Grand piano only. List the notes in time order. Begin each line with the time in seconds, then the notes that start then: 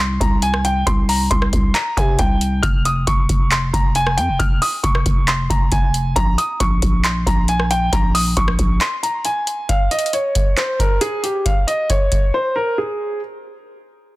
0.00 C6
0.21 A#5
0.43 G#5
0.65 G5
0.87 C6
1.09 A#5
1.31 C6
1.75 A#5
1.97 G#5
2.19 G5
2.63 F6
2.85 D#6
3.07 C#6
3.52 C6
3.73 A#5
3.96 G#5
4.17 G5
4.39 F6
4.62 D#6
4.83 C#6
5.28 C6
5.50 A#5
5.72 G#5
6.16 A#5
6.38 D#6
6.60 C#6
7.04 C6
7.27 A#5
7.49 G#5
7.71 G5
7.93 A#5
8.15 D#6
8.37 C#6
8.81 C6
9.03 A#5
9.25 G#5
9.69 F5
9.91 D#5
10.13 C#5
10.57 C5
10.80 A#4
11.01 G#4
11.23 G4
11.46 F5
11.67 D#5
11.90 C#5
12.34 C5
12.56 A#4
12.78 G#4